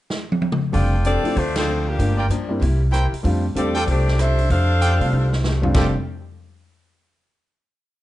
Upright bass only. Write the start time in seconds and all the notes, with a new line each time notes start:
0.73 F1
1.36 D2
1.99 G1
2.29 G2
2.62 C2
3.24 F2
3.55 E2
3.87 C2
4.50 F2
5.00 C3
5.12 C2
5.74 F1